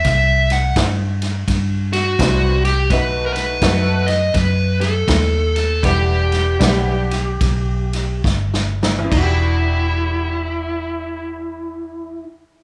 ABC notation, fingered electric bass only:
X:1
M:4/4
L:1/8
Q:"Swing" 1/4=79
K:Em
V:1 name="Fingered electric bass" clef=bass
C,,2 G,,2 G,,2 C,,2 | B,,,2 F,,2 F,,2 ^D,,2 | E,,,2 B,,,2 B,,,2 G,,,2 | E,,,8 |]